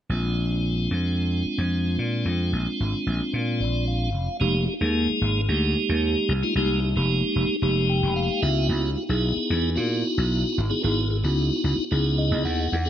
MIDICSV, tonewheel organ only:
0, 0, Header, 1, 2, 480
1, 0, Start_track
1, 0, Tempo, 536673
1, 94, Time_signature, 4, 2, 24, 8
1, 11534, End_track
2, 0, Start_track
2, 0, Title_t, "Tonewheel organ"
2, 0, Program_c, 0, 16
2, 88, Note_on_c, 0, 56, 52
2, 93, Note_on_c, 0, 60, 48
2, 97, Note_on_c, 0, 62, 49
2, 106, Note_on_c, 0, 65, 59
2, 3227, Note_on_c, 0, 74, 57
2, 3447, Note_off_c, 0, 74, 0
2, 3466, Note_on_c, 0, 77, 58
2, 3662, Note_off_c, 0, 56, 0
2, 3665, Note_off_c, 0, 60, 0
2, 3667, Note_off_c, 0, 62, 0
2, 3671, Note_off_c, 0, 65, 0
2, 3910, Note_off_c, 0, 77, 0
2, 3934, Note_on_c, 0, 56, 98
2, 3941, Note_on_c, 0, 58, 85
2, 3945, Note_on_c, 0, 63, 89
2, 3946, Note_on_c, 0, 67, 113
2, 4153, Note_off_c, 0, 56, 0
2, 4157, Note_off_c, 0, 58, 0
2, 4158, Note_off_c, 0, 63, 0
2, 4159, Note_off_c, 0, 67, 0
2, 4175, Note_on_c, 0, 63, 28
2, 4184, Note_on_c, 0, 67, 31
2, 4237, Note_off_c, 0, 63, 0
2, 4241, Note_off_c, 0, 67, 0
2, 4301, Note_on_c, 0, 58, 72
2, 4303, Note_on_c, 0, 56, 83
2, 4309, Note_on_c, 0, 63, 70
2, 4309, Note_on_c, 0, 68, 85
2, 4839, Note_off_c, 0, 58, 0
2, 4840, Note_off_c, 0, 56, 0
2, 4842, Note_off_c, 0, 68, 0
2, 4843, Note_off_c, 0, 63, 0
2, 4908, Note_on_c, 0, 56, 79
2, 4909, Note_on_c, 0, 58, 67
2, 4915, Note_on_c, 0, 63, 73
2, 4918, Note_on_c, 0, 67, 86
2, 5657, Note_off_c, 0, 56, 0
2, 5658, Note_off_c, 0, 58, 0
2, 5661, Note_off_c, 0, 63, 0
2, 5662, Note_off_c, 0, 67, 0
2, 5748, Note_on_c, 0, 56, 74
2, 5754, Note_on_c, 0, 63, 70
2, 5755, Note_on_c, 0, 58, 70
2, 5755, Note_on_c, 0, 65, 85
2, 5850, Note_off_c, 0, 56, 0
2, 5853, Note_off_c, 0, 63, 0
2, 5854, Note_off_c, 0, 58, 0
2, 5854, Note_off_c, 0, 65, 0
2, 5868, Note_on_c, 0, 56, 96
2, 5871, Note_on_c, 0, 58, 86
2, 5875, Note_on_c, 0, 63, 92
2, 5877, Note_on_c, 0, 67, 113
2, 6079, Note_off_c, 0, 56, 0
2, 6081, Note_off_c, 0, 58, 0
2, 6082, Note_off_c, 0, 63, 0
2, 6083, Note_off_c, 0, 67, 0
2, 6106, Note_on_c, 0, 63, 29
2, 6121, Note_on_c, 0, 67, 30
2, 6161, Note_off_c, 0, 63, 0
2, 6168, Note_off_c, 0, 67, 0
2, 6225, Note_on_c, 0, 56, 83
2, 6230, Note_on_c, 0, 58, 72
2, 6235, Note_on_c, 0, 63, 77
2, 6238, Note_on_c, 0, 67, 90
2, 6759, Note_off_c, 0, 56, 0
2, 6762, Note_off_c, 0, 58, 0
2, 6764, Note_off_c, 0, 63, 0
2, 6766, Note_off_c, 0, 67, 0
2, 6817, Note_on_c, 0, 56, 80
2, 6824, Note_on_c, 0, 58, 72
2, 6825, Note_on_c, 0, 67, 88
2, 6826, Note_on_c, 0, 63, 75
2, 7060, Note_on_c, 0, 79, 63
2, 7282, Note_off_c, 0, 79, 0
2, 7299, Note_on_c, 0, 77, 65
2, 7522, Note_off_c, 0, 63, 0
2, 7522, Note_off_c, 0, 77, 0
2, 7531, Note_on_c, 0, 59, 79
2, 7533, Note_on_c, 0, 63, 71
2, 7534, Note_on_c, 0, 64, 77
2, 7535, Note_on_c, 0, 76, 67
2, 7537, Note_off_c, 0, 56, 0
2, 7540, Note_on_c, 0, 66, 91
2, 7541, Note_off_c, 0, 58, 0
2, 7541, Note_off_c, 0, 67, 0
2, 7759, Note_off_c, 0, 76, 0
2, 7965, Note_off_c, 0, 59, 0
2, 7966, Note_off_c, 0, 63, 0
2, 7967, Note_off_c, 0, 64, 0
2, 7970, Note_off_c, 0, 66, 0
2, 8012, Note_on_c, 0, 64, 30
2, 8029, Note_on_c, 0, 66, 32
2, 8073, Note_off_c, 0, 64, 0
2, 8081, Note_off_c, 0, 66, 0
2, 8132, Note_on_c, 0, 59, 84
2, 8134, Note_on_c, 0, 63, 73
2, 8140, Note_on_c, 0, 64, 74
2, 8144, Note_on_c, 0, 68, 91
2, 8673, Note_off_c, 0, 59, 0
2, 8673, Note_off_c, 0, 63, 0
2, 8676, Note_off_c, 0, 64, 0
2, 8678, Note_off_c, 0, 68, 0
2, 8726, Note_on_c, 0, 59, 76
2, 8726, Note_on_c, 0, 63, 72
2, 8731, Note_on_c, 0, 64, 70
2, 8736, Note_on_c, 0, 66, 88
2, 9485, Note_off_c, 0, 59, 0
2, 9485, Note_off_c, 0, 63, 0
2, 9488, Note_off_c, 0, 64, 0
2, 9490, Note_off_c, 0, 66, 0
2, 9568, Note_on_c, 0, 59, 72
2, 9572, Note_on_c, 0, 63, 67
2, 9575, Note_on_c, 0, 64, 70
2, 9578, Note_on_c, 0, 68, 85
2, 9679, Note_off_c, 0, 59, 0
2, 9681, Note_off_c, 0, 63, 0
2, 9683, Note_off_c, 0, 64, 0
2, 9684, Note_off_c, 0, 68, 0
2, 9690, Note_on_c, 0, 59, 102
2, 9694, Note_on_c, 0, 63, 93
2, 9695, Note_on_c, 0, 64, 89
2, 9697, Note_on_c, 0, 68, 110
2, 9909, Note_off_c, 0, 59, 0
2, 9911, Note_off_c, 0, 63, 0
2, 9911, Note_off_c, 0, 64, 0
2, 9912, Note_off_c, 0, 68, 0
2, 9930, Note_on_c, 0, 64, 29
2, 9936, Note_on_c, 0, 68, 31
2, 9992, Note_off_c, 0, 64, 0
2, 9995, Note_off_c, 0, 68, 0
2, 10051, Note_on_c, 0, 59, 80
2, 10051, Note_on_c, 0, 63, 73
2, 10057, Note_on_c, 0, 64, 70
2, 10059, Note_on_c, 0, 66, 86
2, 10592, Note_off_c, 0, 59, 0
2, 10592, Note_off_c, 0, 63, 0
2, 10595, Note_off_c, 0, 64, 0
2, 10596, Note_off_c, 0, 66, 0
2, 10652, Note_on_c, 0, 59, 79
2, 10653, Note_on_c, 0, 63, 70
2, 10655, Note_on_c, 0, 64, 75
2, 10661, Note_on_c, 0, 68, 88
2, 10896, Note_on_c, 0, 75, 64
2, 11120, Note_off_c, 0, 75, 0
2, 11135, Note_on_c, 0, 78, 62
2, 11408, Note_off_c, 0, 59, 0
2, 11409, Note_off_c, 0, 63, 0
2, 11409, Note_off_c, 0, 64, 0
2, 11413, Note_off_c, 0, 68, 0
2, 11495, Note_on_c, 0, 59, 76
2, 11496, Note_on_c, 0, 63, 69
2, 11501, Note_on_c, 0, 68, 83
2, 11504, Note_on_c, 0, 64, 64
2, 11534, Note_off_c, 0, 59, 0
2, 11534, Note_off_c, 0, 63, 0
2, 11534, Note_off_c, 0, 64, 0
2, 11534, Note_off_c, 0, 68, 0
2, 11534, Note_off_c, 0, 78, 0
2, 11534, End_track
0, 0, End_of_file